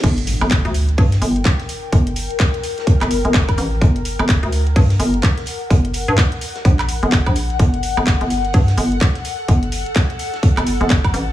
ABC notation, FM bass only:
X:1
M:4/4
L:1/16
Q:"Swing 16ths" 1/4=127
K:Gm
V:1 name="FM bass" clef=bass
G,,,3 G,,,2 D,,3 G,,2 G,,,2 z4 | G,,,3 z6 G,,,2 G,,,3 A,,,2 | G,,,3 G,,,2 D,,3 G,,2 G,,,2 z4 | G,,,3 G,, z4 B,,,3 G,,,2 B,,,3 |
G,,,3 G,,,2 G,,,3 G,,2 G,,,2 z4 | G,,,3 z6 G,,,2 G,,,3 A,,,2 |]